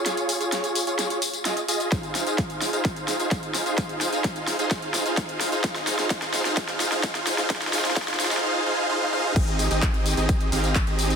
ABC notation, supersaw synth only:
X:1
M:4/4
L:1/16
Q:1/4=129
K:Ab
V:1 name="Supersaw synth"
[FAd]3 [FAd]4 [FAd]3 z2 [FAe] z [FAe]2 | [EFAcf]3 [EFAcf]4 [EFAcf] [EFAcf]3 [EFAcf]4 [EFAcf] | [EFAcf]3 [EFAcf]4 [EFAcf] [EFAcf]3 [EFAcf]4 [EFAcf] | [EFAcf]3 [EFAcf] [EFAcf]3 [EFAcf] [EFAcf]3 [EFAcf] [EFAcf]3 [EFAcf] |
[EFAcf]2 [EFAcf]2 [EFAcf]2 [EFAcf]2 [EFAcf]2 [EFAcf]2 [EFAcf]2 [EFAcf]2 | [CEGAe]3 [CEGAe]4 [CEGAe]3 [CEGAf]2 z [CEGAe]3 |]